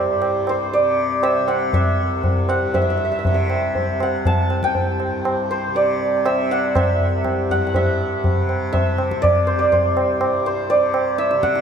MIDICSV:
0, 0, Header, 1, 4, 480
1, 0, Start_track
1, 0, Tempo, 502934
1, 204, Time_signature, 5, 2, 24, 8
1, 6443, Tempo, 493421
1, 11171, End_track
2, 0, Start_track
2, 0, Title_t, "Santur"
2, 0, Program_c, 0, 15
2, 0, Note_on_c, 0, 72, 60
2, 0, Note_on_c, 0, 74, 76
2, 0, Note_on_c, 0, 76, 55
2, 465, Note_off_c, 0, 72, 0
2, 469, Note_on_c, 0, 72, 74
2, 697, Note_off_c, 0, 74, 0
2, 701, Note_on_c, 0, 74, 75
2, 1174, Note_off_c, 0, 76, 0
2, 1177, Note_on_c, 0, 76, 87
2, 1414, Note_on_c, 0, 78, 76
2, 1656, Note_off_c, 0, 76, 0
2, 1660, Note_on_c, 0, 76, 79
2, 2376, Note_off_c, 0, 78, 0
2, 2380, Note_on_c, 0, 78, 79
2, 2617, Note_off_c, 0, 76, 0
2, 2620, Note_on_c, 0, 76, 75
2, 2685, Note_off_c, 0, 76, 0
2, 2689, Note_on_c, 0, 76, 50
2, 2764, Note_off_c, 0, 76, 0
2, 2768, Note_on_c, 0, 76, 55
2, 2836, Note_off_c, 0, 76, 0
2, 2839, Note_on_c, 0, 76, 43
2, 2905, Note_off_c, 0, 76, 0
2, 2909, Note_on_c, 0, 76, 48
2, 2969, Note_off_c, 0, 76, 0
2, 2973, Note_on_c, 0, 76, 46
2, 2988, Note_off_c, 0, 72, 0
2, 3038, Note_off_c, 0, 76, 0
2, 3042, Note_on_c, 0, 76, 47
2, 3048, Note_off_c, 0, 74, 0
2, 3116, Note_off_c, 0, 76, 0
2, 3119, Note_on_c, 0, 76, 46
2, 3187, Note_off_c, 0, 76, 0
2, 3191, Note_on_c, 0, 76, 57
2, 3839, Note_off_c, 0, 78, 0
2, 3843, Note_on_c, 0, 78, 66
2, 4071, Note_on_c, 0, 81, 86
2, 4427, Note_on_c, 0, 79, 75
2, 4484, Note_off_c, 0, 78, 0
2, 5255, Note_on_c, 0, 72, 73
2, 5394, Note_off_c, 0, 76, 0
2, 5495, Note_on_c, 0, 74, 73
2, 5925, Note_off_c, 0, 81, 0
2, 5972, Note_on_c, 0, 76, 91
2, 6216, Note_on_c, 0, 78, 82
2, 6273, Note_off_c, 0, 79, 0
2, 6452, Note_off_c, 0, 76, 0
2, 6456, Note_on_c, 0, 76, 78
2, 7179, Note_off_c, 0, 78, 0
2, 7183, Note_on_c, 0, 78, 86
2, 7330, Note_off_c, 0, 78, 0
2, 7334, Note_on_c, 0, 78, 52
2, 7418, Note_off_c, 0, 76, 0
2, 7422, Note_on_c, 0, 76, 71
2, 7800, Note_off_c, 0, 72, 0
2, 7869, Note_off_c, 0, 74, 0
2, 8360, Note_off_c, 0, 76, 0
2, 8364, Note_on_c, 0, 76, 89
2, 8843, Note_on_c, 0, 74, 86
2, 9087, Note_on_c, 0, 72, 77
2, 9199, Note_off_c, 0, 74, 0
2, 9203, Note_on_c, 0, 74, 75
2, 9328, Note_off_c, 0, 72, 0
2, 9332, Note_on_c, 0, 72, 67
2, 9426, Note_off_c, 0, 78, 0
2, 10049, Note_off_c, 0, 72, 0
2, 10052, Note_on_c, 0, 72, 77
2, 10279, Note_off_c, 0, 74, 0
2, 10283, Note_on_c, 0, 74, 88
2, 10610, Note_off_c, 0, 76, 0
2, 10755, Note_on_c, 0, 76, 91
2, 10994, Note_on_c, 0, 78, 90
2, 11171, Note_off_c, 0, 72, 0
2, 11171, Note_off_c, 0, 74, 0
2, 11171, Note_off_c, 0, 76, 0
2, 11171, Note_off_c, 0, 78, 0
2, 11171, End_track
3, 0, Start_track
3, 0, Title_t, "Tanpura"
3, 0, Program_c, 1, 104
3, 0, Note_on_c, 1, 36, 59
3, 0, Note_on_c, 1, 43, 47
3, 0, Note_on_c, 1, 48, 56
3, 142, Note_off_c, 1, 43, 0
3, 142, Note_on_c, 1, 43, 50
3, 736, Note_off_c, 1, 48, 0
3, 736, Note_on_c, 1, 48, 57
3, 1331, Note_off_c, 1, 48, 0
3, 1331, Note_on_c, 1, 48, 57
3, 1916, Note_off_c, 1, 36, 0
3, 1919, Note_on_c, 1, 36, 61
3, 2499, Note_off_c, 1, 43, 0
3, 2503, Note_on_c, 1, 43, 48
3, 3097, Note_off_c, 1, 48, 0
3, 3097, Note_on_c, 1, 48, 60
3, 3672, Note_off_c, 1, 48, 0
3, 3672, Note_on_c, 1, 48, 56
3, 4257, Note_off_c, 1, 36, 0
3, 4260, Note_on_c, 1, 36, 59
3, 4831, Note_off_c, 1, 43, 0
3, 4835, Note_on_c, 1, 43, 52
3, 5422, Note_off_c, 1, 48, 0
3, 5422, Note_on_c, 1, 48, 57
3, 5996, Note_off_c, 1, 48, 0
3, 5996, Note_on_c, 1, 48, 53
3, 6581, Note_off_c, 1, 36, 0
3, 6585, Note_on_c, 1, 36, 58
3, 7160, Note_off_c, 1, 43, 0
3, 7164, Note_on_c, 1, 43, 53
3, 7405, Note_off_c, 1, 43, 0
3, 7405, Note_on_c, 1, 43, 50
3, 7998, Note_off_c, 1, 48, 0
3, 7998, Note_on_c, 1, 48, 53
3, 8582, Note_off_c, 1, 48, 0
3, 8582, Note_on_c, 1, 48, 55
3, 9163, Note_off_c, 1, 36, 0
3, 9167, Note_on_c, 1, 36, 57
3, 9749, Note_off_c, 1, 43, 0
3, 9749, Note_on_c, 1, 43, 52
3, 10326, Note_off_c, 1, 48, 0
3, 10326, Note_on_c, 1, 48, 52
3, 10902, Note_off_c, 1, 48, 0
3, 10902, Note_on_c, 1, 48, 63
3, 11171, Note_off_c, 1, 36, 0
3, 11171, Note_off_c, 1, 43, 0
3, 11171, Note_off_c, 1, 48, 0
3, 11171, End_track
4, 0, Start_track
4, 0, Title_t, "Tabla"
4, 208, Note_on_c, 9, 60, 62
4, 303, Note_off_c, 9, 60, 0
4, 450, Note_on_c, 9, 60, 52
4, 545, Note_off_c, 9, 60, 0
4, 692, Note_on_c, 9, 63, 61
4, 787, Note_off_c, 9, 63, 0
4, 1173, Note_on_c, 9, 60, 63
4, 1269, Note_off_c, 9, 60, 0
4, 1410, Note_on_c, 9, 60, 55
4, 1505, Note_off_c, 9, 60, 0
4, 1653, Note_on_c, 9, 63, 65
4, 1653, Note_on_c, 9, 64, 68
4, 1749, Note_off_c, 9, 63, 0
4, 1749, Note_off_c, 9, 64, 0
4, 2134, Note_on_c, 9, 63, 71
4, 2134, Note_on_c, 9, 64, 62
4, 2229, Note_off_c, 9, 63, 0
4, 2229, Note_off_c, 9, 64, 0
4, 2374, Note_on_c, 9, 60, 54
4, 2469, Note_off_c, 9, 60, 0
4, 2617, Note_on_c, 9, 63, 84
4, 2617, Note_on_c, 9, 64, 81
4, 2712, Note_off_c, 9, 63, 0
4, 2712, Note_off_c, 9, 64, 0
4, 3100, Note_on_c, 9, 63, 70
4, 3100, Note_on_c, 9, 64, 64
4, 3195, Note_off_c, 9, 63, 0
4, 3195, Note_off_c, 9, 64, 0
4, 3337, Note_on_c, 9, 60, 55
4, 3433, Note_off_c, 9, 60, 0
4, 3581, Note_on_c, 9, 63, 64
4, 3581, Note_on_c, 9, 64, 55
4, 3676, Note_off_c, 9, 63, 0
4, 3676, Note_off_c, 9, 64, 0
4, 3821, Note_on_c, 9, 60, 54
4, 3917, Note_off_c, 9, 60, 0
4, 4060, Note_on_c, 9, 63, 71
4, 4060, Note_on_c, 9, 64, 71
4, 4155, Note_off_c, 9, 63, 0
4, 4155, Note_off_c, 9, 64, 0
4, 4297, Note_on_c, 9, 60, 51
4, 4392, Note_off_c, 9, 60, 0
4, 4417, Note_on_c, 9, 37, 49
4, 4512, Note_off_c, 9, 37, 0
4, 4531, Note_on_c, 9, 63, 66
4, 4531, Note_on_c, 9, 64, 61
4, 4626, Note_off_c, 9, 63, 0
4, 4626, Note_off_c, 9, 64, 0
4, 4771, Note_on_c, 9, 60, 55
4, 4867, Note_off_c, 9, 60, 0
4, 5013, Note_on_c, 9, 60, 66
4, 5109, Note_off_c, 9, 60, 0
4, 5489, Note_on_c, 9, 63, 66
4, 5585, Note_off_c, 9, 63, 0
4, 5969, Note_on_c, 9, 60, 68
4, 6065, Note_off_c, 9, 60, 0
4, 6446, Note_on_c, 9, 60, 73
4, 6446, Note_on_c, 9, 64, 67
4, 6544, Note_off_c, 9, 60, 0
4, 6544, Note_off_c, 9, 64, 0
4, 6683, Note_on_c, 9, 64, 48
4, 6780, Note_off_c, 9, 64, 0
4, 6924, Note_on_c, 9, 60, 64
4, 6924, Note_on_c, 9, 64, 62
4, 7022, Note_off_c, 9, 60, 0
4, 7022, Note_off_c, 9, 64, 0
4, 7170, Note_on_c, 9, 64, 49
4, 7267, Note_off_c, 9, 64, 0
4, 7409, Note_on_c, 9, 63, 86
4, 7409, Note_on_c, 9, 64, 80
4, 7506, Note_off_c, 9, 63, 0
4, 7506, Note_off_c, 9, 64, 0
4, 7892, Note_on_c, 9, 63, 68
4, 7892, Note_on_c, 9, 64, 63
4, 7990, Note_off_c, 9, 63, 0
4, 7990, Note_off_c, 9, 64, 0
4, 8136, Note_on_c, 9, 60, 56
4, 8233, Note_off_c, 9, 60, 0
4, 8375, Note_on_c, 9, 63, 70
4, 8375, Note_on_c, 9, 64, 58
4, 8473, Note_off_c, 9, 63, 0
4, 8473, Note_off_c, 9, 64, 0
4, 8615, Note_on_c, 9, 60, 53
4, 8713, Note_off_c, 9, 60, 0
4, 8740, Note_on_c, 9, 37, 57
4, 8838, Note_off_c, 9, 37, 0
4, 8860, Note_on_c, 9, 63, 76
4, 8860, Note_on_c, 9, 64, 67
4, 8957, Note_off_c, 9, 63, 0
4, 8957, Note_off_c, 9, 64, 0
4, 9336, Note_on_c, 9, 63, 66
4, 9336, Note_on_c, 9, 64, 62
4, 9434, Note_off_c, 9, 63, 0
4, 9434, Note_off_c, 9, 64, 0
4, 9573, Note_on_c, 9, 60, 57
4, 9670, Note_off_c, 9, 60, 0
4, 9806, Note_on_c, 9, 60, 73
4, 9903, Note_off_c, 9, 60, 0
4, 10285, Note_on_c, 9, 63, 74
4, 10382, Note_off_c, 9, 63, 0
4, 10518, Note_on_c, 9, 60, 65
4, 10615, Note_off_c, 9, 60, 0
4, 10757, Note_on_c, 9, 62, 67
4, 10854, Note_off_c, 9, 62, 0
4, 10877, Note_on_c, 9, 62, 63
4, 10974, Note_off_c, 9, 62, 0
4, 10996, Note_on_c, 9, 37, 56
4, 11093, Note_off_c, 9, 37, 0
4, 11117, Note_on_c, 9, 62, 57
4, 11171, Note_off_c, 9, 62, 0
4, 11171, End_track
0, 0, End_of_file